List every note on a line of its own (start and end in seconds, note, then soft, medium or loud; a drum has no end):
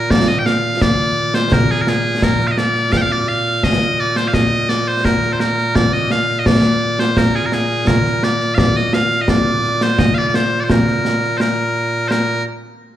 0.00 12.44 A#2 medium
0.00 0.11 A#4 medium
0.10 0.28 D5 loud
0.10 concert bass drum medium
0.10 snare loud
0.28 0.39 D#5 loud
0.28 snare soft
0.39 0.46 G5 medium
0.46 0.82 F5 loud
0.46 snare medium
0.81 1.35 D5 loud
0.81 concert bass drum medium
0.81 snare loud
1.34 1.53 C5 medium
1.34 snare medium
1.52 1.71 A#4 loud
1.52 concert bass drum medium
1.52 snare loud
1.71 1.82 G#4 loud
1.82 1.89 A#4 medium
1.87 2.24 G#4 medium
1.87 snare medium
2.22 2.47 A#4 loud
2.22 concert bass drum medium
2.22 snare loud
2.40 snare soft
2.47 2.51 F5 medium
2.51 2.58 D#5 medium
2.58 2.92 D5 loud
2.58 snare medium
2.75 snare soft
2.92 2.97 F5 loud
2.92 concert bass drum medium
2.92 snare loud
2.97 3.02 G5 loud
3.02 3.12 F5 loud
3.12 3.28 D5 loud
3.28 3.64 F5 loud
3.63 4.00 D#5 loud
3.63 concert bass drum medium
3.63 snare medium
4.00 4.17 D5 medium
4.16 4.28 C5 medium
4.16 snare medium
4.28 4.34 F5 medium
4.34 4.69 D#5 loud
4.34 concert bass drum medium
4.34 snare medium
4.69 4.88 D5 medium
4.69 snare medium
4.88 5.05 C5 medium
5.05 5.33 A#4 medium
5.05 concert bass drum medium
5.05 snare medium
5.23 snare soft
5.33 5.40 C5 medium
5.40 5.75 A#4 medium
5.40 snare medium
5.58 snare soft
5.75 5.93 D5 loud
5.75 concert bass drum medium
5.75 snare loud
5.93 6.11 D#5 medium
5.93 snare soft
6.11 6.39 F5 loud
6.11 snare medium
6.39 6.46 D#5 medium
6.46 7.00 D5 loud
6.46 concert bass drum medium
6.46 snare loud
6.99 7.17 C5 medium
6.99 snare medium
7.17 7.36 A#4 loud
7.17 concert bass drum medium
7.17 snare medium
7.36 7.46 G#4 medium
7.46 7.54 A#4 medium
7.52 7.88 G#4 medium
7.52 snare medium
7.87 8.24 A#4 medium
7.87 concert bass drum medium
7.87 snare loud
8.05 snare soft
8.23 8.55 D5 medium
8.23 snare medium
8.40 snare soft
8.55 8.76 D5 loud
8.55 8.58 F5 loud
8.55 concert bass drum medium
8.55 snare loud
8.75 8.94 D#5 medium
8.75 snare soft
8.93 9.21 F5 loud
8.93 snare medium
9.11 snare soft
9.21 9.29 D#5 medium
9.28 9.83 D5 loud
9.28 concert bass drum medium
9.28 snare loud
9.64 snare soft
9.81 9.99 C5 medium
9.81 snare medium
9.99 10.14 D#5 loud
9.99 concert bass drum medium
9.99 snare loud
10.14 10.28 D5 medium
10.14 10.18 F5 medium
10.28 10.35 D5 medium
10.34 10.61 C5 medium
10.34 snare medium
10.61 10.71 C5 medium
10.61 10.64 D5 medium
10.70 11.37 A#4 medium
10.70 concert bass drum medium
10.70 snare loud
10.87 snare soft
11.05 snare medium
11.23 snare soft
11.37 12.08 A#4 medium
11.37 11.41 C5 medium
11.37 snare medium
12.08 12.44 A#4 medium
12.08 12.11 C5 medium
12.08 snare medium